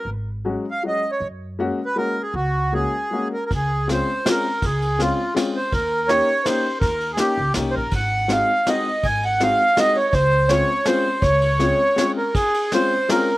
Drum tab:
RD |------|------|------|x-x-x-|
SD |------|------|------|--o-o-|
BD |------|------|------|o-----|

RD |xxx-x-|x-x-x-|xxx-x-|x-x-x-|
SD |--o-o-|--o-o-|--o-o-|--o-o-|
BD |o-----|o-----|o-----|o-----|

RD |xxx-x-|x-x-x-|xxx-x-|xxx-x-|
SD |--o-o-|--o-o-|--o-o-|--o-o-|
BD |o-----|o-----|o-----|o-----|